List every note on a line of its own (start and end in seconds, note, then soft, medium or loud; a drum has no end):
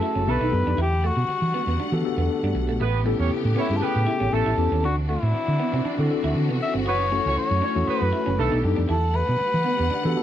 0.00 0.26 E3 medium
0.00 0.29 A3 loud
0.00 0.76 A3 medium
0.00 0.26 C#4 medium
0.00 0.29 C#4 loud
0.00 0.29 E4 medium
0.00 0.11 E4 medium
0.00 0.26 F#4 medium
0.00 0.29 F#4 loud
0.00 0.29 G#4 loud
0.00 0.28 A4 loud
0.00 0.31 A4 loud
0.15 0.25 F#1 medium
0.15 0.23 C#4 medium
0.27 0.39 B1 loud
0.27 0.78 D#3 medium
0.27 0.48 A3 medium
0.27 0.49 B3 medium
0.27 0.78 B3 medium
0.27 0.49 D4 medium
0.27 0.49 D#4 medium
0.27 0.49 G4 medium
0.27 0.78 G4 medium
0.27 0.48 A4 loud
0.27 0.49 A4 medium
0.27 0.79 B4 loud
0.41 0.51 B1 medium
0.41 0.48 D#4 medium
0.52 0.64 F#2 loud
0.52 0.78 B3 medium
0.52 0.78 D4 medium
0.52 0.78 D#4 medium
0.52 0.78 G4 medium
0.52 0.78 A4 medium
0.52 muted clean electric guitar stroke soft
0.67 0.76 F2 medium
0.67 0.74 D4 medium
0.77 1.10 E2 loud
0.77 2.78 D3 medium
0.77 2.78 G3 medium
0.77 4.79 A3 medium
0.77 0.86 E4 medium
0.77 2.78 F#5 medium
0.82 1.08 G4 loud
1.04 1.12 A3 medium
1.04 2.06 F#4 medium
1.17 1.26 B2 medium
1.17 muted clean electric guitar stroke soft
1.28 muted fingered electric bass stroke soft
1.28 muted clean electric guitar stroke soft
1.42 1.52 E3 loud
1.54 1.62 B3 medium
1.67 1.77 E2 medium
1.67 1.75 B3 medium
1.79 1.88 D4 medium
1.79 muted fingered electric bass stroke soft
1.92 2.02 E3 medium
1.92 2.02 B3 medium
1.92 2.03 D4 medium
1.92 2.03 F#4 medium
1.92 2.03 G4 medium
1.92 2.03 A4 loud
1.92 muted clean electric guitar stroke soft
2.04 2.80 B3 medium
2.04 2.80 D4 medium
2.04 2.81 F#4 medium
2.04 2.81 G4 medium
2.04 2.81 A4 medium
2.18 2.27 E2 loud
2.18 2.25 B3 medium
2.43 2.53 G2 medium
2.43 2.51 D4 medium
2.55 2.69 B1 medium
2.55 muted clean electric guitar stroke soft
2.69 2.78 A#1 medium
2.69 2.76 A3 medium
2.80 3.12 A1 loud
2.80 4.31 C#3 medium
2.80 2.89 A3 medium
2.80 3.01 B3 loud
2.80 4.31 B3 medium
2.80 4.31 G4 loud
2.80 3.01 B4 loud
2.94 muted clean electric guitar stroke soft
3.05 3.14 G3 medium
3.05 3.59 B3 loud
3.05 3.59 C#4 loud
3.05 3.59 E4 loud
3.05 3.59 G4 medium
3.05 3.60 A4 loud
3.19 3.29 E2 medium
3.19 3.29 C#4 medium
3.19 3.29 C#5 medium
3.31 muted fingered electric bass stroke soft
3.45 3.54 A2 loud
3.56 3.64 B3 medium
3.56 3.68 C#4 medium
3.56 3.78 E4 loud
3.56 3.68 C#5 medium
3.70 3.79 G2 medium
3.70 4.23 B3 medium
3.70 4.23 C#4 medium
3.70 4.23 E4 medium
3.70 4.23 G4 medium
3.70 3.76 G#4 medium
3.77 3.85 A4 medium
3.77 4.27 A4 medium
3.81 4.02 B3 loud
3.81 4.35 G4 loud
3.81 4.02 B4 loud
3.81 muted clean electric guitar stroke soft
3.81 muted fingered electric bass stroke soft
3.96 4.05 A2 loud
4.07 4.15 E4 medium
4.20 4.31 A1 medium
4.20 4.28 C#4 medium
4.32 4.44 A1 loud
4.32 8.35 E3 medium
4.32 4.53 A3 loud
4.32 4.54 B3 medium
4.32 4.54 C#4 medium
4.32 4.83 C#4 medium
4.32 4.54 E4 medium
4.32 4.54 G4 medium
4.32 4.83 G4 medium
4.32 4.54 A4 medium
4.32 4.53 A4 loud
4.32 4.84 A4 loud
4.46 4.56 A1 medium
4.46 4.53 E4 medium
4.58 4.69 E2 medium
4.58 4.83 B3 medium
4.58 4.83 C#4 medium
4.58 4.83 E4 medium
4.58 4.84 G4 medium
4.58 4.84 A4 medium
4.58 muted clean electric guitar stroke soft
4.72 4.84 D#2 medium
4.72 4.79 C#4 medium
4.83 5.15 D2 loud
4.83 6.84 C4 medium
4.83 6.84 D4 medium
4.83 4.92 D4 medium
4.83 8.35 F#4 loud
4.83 4.96 F#4 loud
5.09 5.17 A3 medium
5.09 6.07 E4 medium
5.23 5.32 A2 medium
5.23 muted clean electric guitar stroke soft
5.34 muted fingered electric bass stroke soft
5.34 muted clean electric guitar stroke soft
5.48 5.57 D3 loud
5.59 5.68 B3 medium
5.73 5.83 C3 loud
5.73 5.81 C4 medium
5.85 5.93 D4 medium
5.98 6.08 D3 medium
5.98 6.08 C4 medium
5.98 6.08 D4 medium
5.98 6.08 E4 medium
5.98 6.08 F#4 medium
5.98 6.09 A4 loud
5.98 muted clean electric guitar stroke soft
6.10 6.86 C4 medium
6.10 6.86 D4 medium
6.10 6.86 E4 medium
6.10 6.86 F#4 medium
6.10 6.87 A4 medium
6.24 6.33 D2 medium
6.24 6.31 E4 medium
6.36 6.49 D3 loud
6.49 6.59 C3 medium
6.49 6.56 B3 medium
6.61 6.73 E5 medium
6.61 muted clean electric guitar stroke soft
6.74 6.87 G1 medium
6.74 6.81 C4 medium
6.86 7.18 F#1 medium
6.86 10.23 A3 medium
6.86 7.07 B3 loud
6.86 8.37 C#4 medium
6.86 6.94 F#4 medium
6.86 7.07 B4 loud
6.86 7.34 C#5 loud
7.00 muted clean electric guitar stroke soft
7.11 7.65 A3 medium
7.11 7.65 C#4 medium
7.11 7.20 C#4 medium
7.11 7.65 E4 medium
7.11 7.65 F#4 medium
7.11 7.65 A4 medium
7.26 7.35 C#2 medium
7.26 7.35 C#4 medium
7.26 7.36 C#5 loud
7.37 7.90 C#5 loud
7.37 muted fingered electric bass stroke soft
7.51 7.60 F#2 loud
7.62 7.74 C#4 medium
7.62 7.70 D4 medium
7.62 7.74 C#5 medium
7.75 7.86 E2 medium
7.75 8.29 A3 medium
7.75 8.29 C#4 medium
7.75 8.29 E4 medium
7.75 8.29 F#4 medium
7.75 8.29 A4 medium
7.88 8.08 B3 loud
7.88 8.08 B4 loud
7.88 8.64 B4 medium
7.88 muted clean electric guitar stroke soft
7.88 muted fingered electric bass stroke soft
8.02 8.11 F#2 loud
8.13 8.21 E4 medium
8.26 8.37 F#1 medium
8.26 8.33 C#4 medium
8.38 8.50 B1 loud
8.38 8.89 D#3 medium
8.38 8.59 A3 loud
8.38 8.88 B3 medium
8.38 8.60 B3 medium
8.38 8.60 D4 medium
8.38 8.60 D#4 medium
8.38 8.88 G4 medium
8.38 8.60 G4 medium
8.38 8.59 A4 loud
8.38 8.61 A4 medium
8.52 8.62 B1 medium
8.52 8.59 D#4 medium
8.64 8.75 F#2 medium
8.64 8.89 B3 medium
8.64 8.89 D4 medium
8.64 8.89 D#4 medium
8.64 8.90 G4 medium
8.64 8.90 A4 medium
8.64 muted clean electric guitar stroke soft
8.76 8.87 F2 medium
8.76 8.84 D4 medium
8.89 9.21 E2 loud
8.89 10.23 D3 medium
8.89 10.23 G3 medium
8.89 8.97 E4 medium
8.89 9.17 A4 loud
8.89 10.23 F#5 loud
9.14 9.22 A3 medium
9.14 10.23 B4 loud
9.27 9.38 B2 medium
9.27 muted clean electric guitar stroke soft
9.39 muted clean electric guitar stroke soft
9.54 9.63 E3 loud
9.64 9.73 B3 medium
9.78 9.89 E2 medium
9.78 9.86 B3 medium
9.90 9.99 D4 medium
9.90 muted fingered electric bass stroke soft
10.03 10.14 E3 loud
10.03 10.14 B3 loud
10.03 10.14 D4 medium
10.03 10.14 F#4 medium
10.03 10.15 G4 medium
10.03 10.15 A4 loud
10.03 muted clean electric guitar stroke soft
10.16 10.23 B3 medium
10.16 10.23 D4 medium
10.16 10.23 F#4 medium
10.16 10.23 G4 medium
10.16 10.23 A4 medium